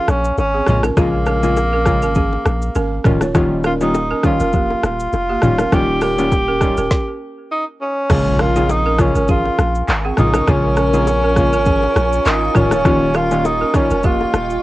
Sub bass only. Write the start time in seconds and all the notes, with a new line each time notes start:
0.08 A#1
0.38 G#1
0.67 A#1
0.97 A#1
2.03 G#1
2.46 A#1
2.76 G#1
3.05 D#1
4.40 F1
4.83 D#1
5.13 F1
5.43 D#1
5.72 D#1
6.78 D#1
8.10 A#1
9.15 G#1
9.59 A#1
9.88 G#1
10.18 A#1
10.48 A#1
11.53 G#1
11.96 A#1
12.26 G#1
12.56 D#1
13.91 F1
14.34 D#1